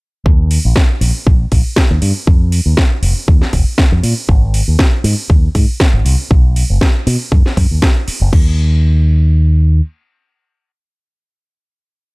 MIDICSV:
0, 0, Header, 1, 4, 480
1, 0, Start_track
1, 0, Tempo, 504202
1, 244, Time_signature, 4, 2, 24, 8
1, 11565, End_track
2, 0, Start_track
2, 0, Title_t, "Fingered electric bass"
2, 0, Program_c, 0, 33
2, 243, Note_on_c, 0, 39, 96
2, 544, Note_off_c, 0, 39, 0
2, 619, Note_on_c, 0, 34, 85
2, 688, Note_off_c, 0, 34, 0
2, 960, Note_on_c, 0, 34, 78
2, 1050, Note_off_c, 0, 34, 0
2, 1204, Note_on_c, 0, 34, 81
2, 1371, Note_off_c, 0, 34, 0
2, 1444, Note_on_c, 0, 34, 77
2, 1532, Note_off_c, 0, 34, 0
2, 1816, Note_on_c, 0, 39, 84
2, 1887, Note_off_c, 0, 39, 0
2, 1921, Note_on_c, 0, 43, 96
2, 2010, Note_off_c, 0, 43, 0
2, 2166, Note_on_c, 0, 41, 96
2, 2465, Note_off_c, 0, 41, 0
2, 2529, Note_on_c, 0, 39, 88
2, 2604, Note_off_c, 0, 39, 0
2, 2877, Note_on_c, 0, 29, 79
2, 2968, Note_off_c, 0, 29, 0
2, 3123, Note_on_c, 0, 39, 84
2, 3248, Note_off_c, 0, 39, 0
2, 3360, Note_on_c, 0, 29, 81
2, 3450, Note_off_c, 0, 29, 0
2, 3733, Note_on_c, 0, 41, 85
2, 3806, Note_off_c, 0, 41, 0
2, 3838, Note_on_c, 0, 46, 95
2, 3929, Note_off_c, 0, 46, 0
2, 4082, Note_on_c, 0, 32, 100
2, 4383, Note_off_c, 0, 32, 0
2, 4453, Note_on_c, 0, 39, 86
2, 4526, Note_off_c, 0, 39, 0
2, 4796, Note_on_c, 0, 44, 79
2, 4888, Note_off_c, 0, 44, 0
2, 5043, Note_on_c, 0, 39, 82
2, 5211, Note_off_c, 0, 39, 0
2, 5284, Note_on_c, 0, 44, 83
2, 5371, Note_off_c, 0, 44, 0
2, 5651, Note_on_c, 0, 32, 84
2, 5725, Note_off_c, 0, 32, 0
2, 5758, Note_on_c, 0, 36, 97
2, 5849, Note_off_c, 0, 36, 0
2, 6004, Note_on_c, 0, 35, 99
2, 6304, Note_off_c, 0, 35, 0
2, 6378, Note_on_c, 0, 30, 88
2, 6448, Note_off_c, 0, 30, 0
2, 6727, Note_on_c, 0, 47, 80
2, 6813, Note_off_c, 0, 47, 0
2, 6967, Note_on_c, 0, 42, 83
2, 7097, Note_off_c, 0, 42, 0
2, 7205, Note_on_c, 0, 42, 90
2, 7292, Note_off_c, 0, 42, 0
2, 7342, Note_on_c, 0, 39, 81
2, 7410, Note_off_c, 0, 39, 0
2, 7818, Note_on_c, 0, 30, 100
2, 7888, Note_off_c, 0, 30, 0
2, 7927, Note_on_c, 0, 39, 99
2, 9327, Note_off_c, 0, 39, 0
2, 11565, End_track
3, 0, Start_track
3, 0, Title_t, "Muted fingered electric bass strokes"
3, 3254, Note_on_c, 9, 29, 43
3, 3349, Note_off_c, 9, 29, 0
3, 7102, Note_on_c, 9, 29, 45
3, 7198, Note_off_c, 9, 29, 0
3, 7689, Note_on_c, 9, 29, 44
3, 7784, Note_off_c, 9, 29, 0
3, 11565, End_track
4, 0, Start_track
4, 0, Title_t, "Drums"
4, 246, Note_on_c, 9, 36, 120
4, 341, Note_off_c, 9, 36, 0
4, 483, Note_on_c, 9, 46, 106
4, 578, Note_off_c, 9, 46, 0
4, 721, Note_on_c, 9, 38, 122
4, 726, Note_on_c, 9, 36, 119
4, 816, Note_off_c, 9, 38, 0
4, 821, Note_off_c, 9, 36, 0
4, 965, Note_on_c, 9, 46, 109
4, 1060, Note_off_c, 9, 46, 0
4, 1205, Note_on_c, 9, 36, 123
4, 1300, Note_off_c, 9, 36, 0
4, 1444, Note_on_c, 9, 46, 105
4, 1445, Note_on_c, 9, 36, 64
4, 1539, Note_off_c, 9, 46, 0
4, 1540, Note_off_c, 9, 36, 0
4, 1679, Note_on_c, 9, 38, 124
4, 1684, Note_on_c, 9, 36, 122
4, 1774, Note_off_c, 9, 38, 0
4, 1779, Note_off_c, 9, 36, 0
4, 1922, Note_on_c, 9, 46, 106
4, 2017, Note_off_c, 9, 46, 0
4, 2164, Note_on_c, 9, 36, 127
4, 2259, Note_off_c, 9, 36, 0
4, 2402, Note_on_c, 9, 46, 112
4, 2497, Note_off_c, 9, 46, 0
4, 2639, Note_on_c, 9, 38, 121
4, 2643, Note_on_c, 9, 36, 125
4, 2734, Note_off_c, 9, 38, 0
4, 2739, Note_off_c, 9, 36, 0
4, 2881, Note_on_c, 9, 46, 110
4, 2976, Note_off_c, 9, 46, 0
4, 3122, Note_on_c, 9, 36, 125
4, 3218, Note_off_c, 9, 36, 0
4, 3252, Note_on_c, 9, 38, 38
4, 3347, Note_off_c, 9, 38, 0
4, 3361, Note_on_c, 9, 46, 110
4, 3362, Note_on_c, 9, 36, 66
4, 3456, Note_off_c, 9, 46, 0
4, 3457, Note_off_c, 9, 36, 0
4, 3598, Note_on_c, 9, 38, 125
4, 3601, Note_on_c, 9, 36, 126
4, 3693, Note_off_c, 9, 38, 0
4, 3696, Note_off_c, 9, 36, 0
4, 3841, Note_on_c, 9, 46, 108
4, 3936, Note_off_c, 9, 46, 0
4, 4082, Note_on_c, 9, 36, 127
4, 4177, Note_off_c, 9, 36, 0
4, 4322, Note_on_c, 9, 46, 114
4, 4417, Note_off_c, 9, 46, 0
4, 4559, Note_on_c, 9, 38, 117
4, 4563, Note_on_c, 9, 36, 126
4, 4654, Note_off_c, 9, 38, 0
4, 4658, Note_off_c, 9, 36, 0
4, 4801, Note_on_c, 9, 46, 114
4, 4897, Note_off_c, 9, 46, 0
4, 5043, Note_on_c, 9, 36, 127
4, 5138, Note_off_c, 9, 36, 0
4, 5283, Note_on_c, 9, 46, 112
4, 5284, Note_on_c, 9, 36, 68
4, 5378, Note_off_c, 9, 46, 0
4, 5379, Note_off_c, 9, 36, 0
4, 5522, Note_on_c, 9, 38, 126
4, 5524, Note_on_c, 9, 36, 127
4, 5617, Note_off_c, 9, 38, 0
4, 5619, Note_off_c, 9, 36, 0
4, 5766, Note_on_c, 9, 46, 109
4, 5861, Note_off_c, 9, 46, 0
4, 6005, Note_on_c, 9, 36, 127
4, 6100, Note_off_c, 9, 36, 0
4, 6247, Note_on_c, 9, 46, 113
4, 6343, Note_off_c, 9, 46, 0
4, 6485, Note_on_c, 9, 38, 118
4, 6486, Note_on_c, 9, 36, 126
4, 6581, Note_off_c, 9, 36, 0
4, 6581, Note_off_c, 9, 38, 0
4, 6730, Note_on_c, 9, 46, 116
4, 6825, Note_off_c, 9, 46, 0
4, 6967, Note_on_c, 9, 36, 127
4, 7062, Note_off_c, 9, 36, 0
4, 7101, Note_on_c, 9, 38, 35
4, 7196, Note_off_c, 9, 38, 0
4, 7208, Note_on_c, 9, 36, 65
4, 7210, Note_on_c, 9, 46, 114
4, 7303, Note_off_c, 9, 36, 0
4, 7305, Note_off_c, 9, 46, 0
4, 7447, Note_on_c, 9, 36, 127
4, 7447, Note_on_c, 9, 38, 122
4, 7542, Note_off_c, 9, 38, 0
4, 7543, Note_off_c, 9, 36, 0
4, 7689, Note_on_c, 9, 46, 109
4, 7784, Note_off_c, 9, 46, 0
4, 7927, Note_on_c, 9, 36, 118
4, 7929, Note_on_c, 9, 49, 92
4, 8023, Note_off_c, 9, 36, 0
4, 8025, Note_off_c, 9, 49, 0
4, 11565, End_track
0, 0, End_of_file